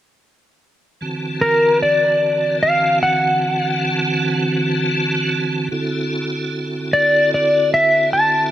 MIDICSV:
0, 0, Header, 1, 3, 480
1, 0, Start_track
1, 0, Tempo, 787402
1, 601, Time_signature, 12, 3, 24, 8
1, 5191, End_track
2, 0, Start_track
2, 0, Title_t, "Electric slide guitar"
2, 0, Program_c, 0, 29
2, 862, Note_on_c, 0, 70, 60
2, 1085, Note_off_c, 0, 70, 0
2, 1112, Note_on_c, 0, 74, 44
2, 1563, Note_off_c, 0, 74, 0
2, 1601, Note_on_c, 0, 77, 50
2, 1815, Note_off_c, 0, 77, 0
2, 1846, Note_on_c, 0, 78, 59
2, 3239, Note_off_c, 0, 78, 0
2, 4226, Note_on_c, 0, 74, 57
2, 4446, Note_off_c, 0, 74, 0
2, 4476, Note_on_c, 0, 74, 53
2, 4691, Note_off_c, 0, 74, 0
2, 4717, Note_on_c, 0, 76, 55
2, 4931, Note_off_c, 0, 76, 0
2, 4957, Note_on_c, 0, 81, 48
2, 5171, Note_off_c, 0, 81, 0
2, 5191, End_track
3, 0, Start_track
3, 0, Title_t, "Tonewheel organ"
3, 0, Program_c, 1, 16
3, 615, Note_on_c, 1, 52, 45
3, 616, Note_on_c, 1, 81, 44
3, 620, Note_on_c, 1, 50, 44
3, 622, Note_on_c, 1, 60, 43
3, 622, Note_on_c, 1, 66, 44
3, 3464, Note_off_c, 1, 52, 0
3, 3465, Note_off_c, 1, 81, 0
3, 3466, Note_off_c, 1, 50, 0
3, 3467, Note_off_c, 1, 60, 0
3, 3467, Note_off_c, 1, 66, 0
3, 3481, Note_on_c, 1, 66, 47
3, 3485, Note_on_c, 1, 60, 44
3, 3486, Note_on_c, 1, 50, 43
3, 3488, Note_on_c, 1, 64, 43
3, 3489, Note_on_c, 1, 69, 47
3, 5191, Note_off_c, 1, 50, 0
3, 5191, Note_off_c, 1, 60, 0
3, 5191, Note_off_c, 1, 64, 0
3, 5191, Note_off_c, 1, 66, 0
3, 5191, Note_off_c, 1, 69, 0
3, 5191, End_track
0, 0, End_of_file